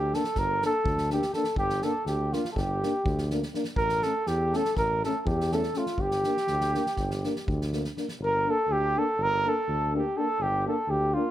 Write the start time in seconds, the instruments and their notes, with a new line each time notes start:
Already playing: tuba D2, flugelhorn G4, cornet G4
0.13 euphonium A#3 D4, flugelhorn A4, cornet A4, snare
0.24 snare
0.35 tuba G1, cornet A#4, kick, snare
0.39 flugelhorn A#4
0.62 euphonium A#3 D4, flugelhorn A4, cornet A4, snare
0.85 tuba D2, kick
0.98 snare
1.10 euphonium D4, cornet G4, flugelhorn G4, snare
1.14 euphonium A#3
1.22 snare
1.33 euphonium A#3 D4, cornet A4, flugelhorn A4, snare
1.44 snare
1.55 tuba G1, flugelhorn G4, cornet G4, kick
1.70 snare
1.82 euphonium A#3 D4, flugelhorn A4, cornet A4, snare
2.05 tuba D2, cornet G4, snare
2.10 flugelhorn G4
2.33 euphonium A#3 D4, cornet F4, flugelhorn F4, snare
2.45 snare
2.52 tuba G1, cornet A4, flugelhorn A4
2.56 cornet G4, flugelhorn G4, kick, snare
2.83 euphonium A#3 D4, snare
3.05 tuba D2, kick
3.18 snare
3.30 euphonium A#3 D4, snare
3.43 snare
3.54 euphonium A#3 D4, snare
3.64 snare
3.75 tuba A1, flugelhorn A#4, cornet A#4, kick
3.89 snare
4.02 euphonium A3 C#4, flugelhorn A4, cornet A4, snare
4.26 tuba E2, flugelhorn G4, cornet G4, snare
4.52 euphonium A3 C#4, flugelhorn A4, snare
4.57 cornet A4
4.65 snare
4.76 tuba A1, cornet A#4, flugelhorn A#4, kick, snare
5.04 euphonium A3 C#4, cornet A4, flugelhorn A4, snare
5.21 cornet A4, flugelhorn A4
5.26 tuba E2, cornet G4, flugelhorn G4, kick
5.41 snare
5.52 euphonium A3 C#4, cornet A4, flugelhorn A4, snare
5.63 snare
5.74 euphonium A3 C#4, flugelhorn F4, cornet F4, snare
5.86 snare
5.97 tuba G1, flugelhorn G4, kick
6.01 cornet G4
6.11 snare
6.23 euphonium A#3 D4, snare
6.37 snare
6.47 tuba D2, snare
6.61 snare
6.74 euphonium A#3 D4, snare
6.86 snare
6.97 tuba G1, kick, snare
7.11 snare
7.24 euphonium A#3 D4, snare
7.36 snare
7.48 tuba D2, kick
7.61 snare
7.73 euphonium A#3 D4, snare
7.84 snare
7.97 euphonium A#3 D4, snare
8.08 snare
8.19 tuba G1
8.23 flugelhorn A#4, cornet A#4
8.46 euphonium A#3 D4
8.50 cornet A4, flugelhorn A4
8.68 tuba D2
8.72 flugelhorn G4, cornet G4
8.96 euphonium A#3 D4, cornet A4, flugelhorn A4
9.18 tuba G1
9.22 flugelhorn A#4, cornet A#4
9.44 euphonium A#3 D4, flugelhorn A4
9.49 cornet A4
9.68 tuba D2
9.93 euphonium A#3 D4, flugelhorn G4, cornet G4
10.17 euphonium A#3 D4, cornet A4, flugelhorn A4
10.39 tuba G1, flugelhorn G4, cornet G4
10.67 euphonium A#3 D4, cornet A4, flugelhorn A4
10.88 tuba D2, cornet G4, flugelhorn G4
11.14 euphonium A#3 D4, cornet F4, flugelhorn F4